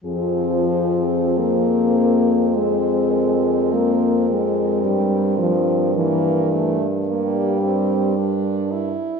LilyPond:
<<
  \new Staff \with { instrumentName = "French horn" } { \time 4/4 \key f \minor \tempo 4 = 54 aes'8 aes'4. c''8 bes'4.~ | bes'2.~ bes'8. r16 | }
  \new Staff \with { instrumentName = "French horn" } { \time 4/4 \key f \minor c'1~ | c'4 bes8 a8 bes8 c'8 d'8 e'8 | }
  \new Staff \with { instrumentName = "French horn" } { \clef bass \time 4/4 \key f \minor f4 bes4 aes4 bes8 aes8 | g8 f8 e8. r16 g4. r8 | }
  \new Staff \with { instrumentName = "French horn" } { \clef bass \time 4/4 \key f \minor f,1 | g,2.~ g,8. r16 | }
>>